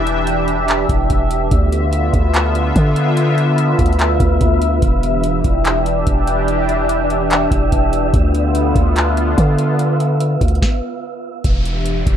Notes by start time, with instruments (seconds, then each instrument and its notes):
Already playing: 808-style bass E1, analog synth pad E3 D4 G4 E5, synth texture D4 G4 E5, downlifter
0.07 closed hi-hat
0.27 closed hi-hat
0.48 closed hi-hat
0.68 clap, closed hi-hat
0.89 808-style bass E1, kick, closed hi-hat
1.10 808-style bass E1, kick, closed hi-hat
1.31 closed hi-hat
1.51 808-style bass D2, analog synth pad D3 B3 F4 E5, synth texture B3 F4, kick, closed hi-hat
1.72 closed hi-hat
1.93 closed hi-hat
2.13 808-style bass D2, kick, closed hi-hat
2.34 clap, closed hi-hat
2.55 closed hi-hat
2.76 808-style bass D3, kick, closed hi-hat
2.96 closed hi-hat
3.17 closed hi-hat
3.38 closed hi-hat
3.58 closed hi-hat
3.79 808-style bass D2, kick, closed hi-hat
3.86 closed hi-hat
3.93 closed hi-hat
3.99 clap, closed hi-hat
4.20 808-style bass D2, kick, closed hi-hat
4.41 808-style bass D2, kick, closed hi-hat
4.62 closed hi-hat
4.82 808-style bass E1, analog synth pad E3 D4 G4, synth texture D4 G4 E5, kick, closed hi-hat
5.03 closed hi-hat
5.24 closed hi-hat
5.44 808-style bass E1, kick, closed hi-hat
5.65 clap, closed hi-hat
5.86 closed hi-hat
6.07 808-style bass E1, kick, closed hi-hat
6.27 closed hi-hat
6.48 closed hi-hat
6.69 closed hi-hat
6.89 closed hi-hat
7.10 closed hi-hat
7.31 clap, closed hi-hat
7.51 808-style bass E1, kick, closed hi-hat
7.72 808-style bass E1, kick, closed hi-hat
7.93 closed hi-hat
8.13 808-style bass D2, analog synth pad D3 B3 F4, synth texture B3 F4, kick, closed hi-hat
8.35 closed hi-hat
8.55 closed hi-hat
8.75 808-style bass D2, kick, closed hi-hat
8.96 clap, closed hi-hat
9.17 closed hi-hat
9.38 808-style bass D3, kick, closed hi-hat
9.59 closed hi-hat
9.79 closed hi-hat
10.00 closed hi-hat
10.21 closed hi-hat
10.41 808-style bass D2, kick, closed hi-hat
10.48 closed hi-hat
10.55 closed hi-hat
10.62 kick, snare
11.44 808-style bass E1, analog synth pad E3 D4 G4 E5, kick, closed hi-hat, downlifter
11.65 closed hi-hat
11.86 closed hi-hat
12.06 808-style bass E1, kick, closed hi-hat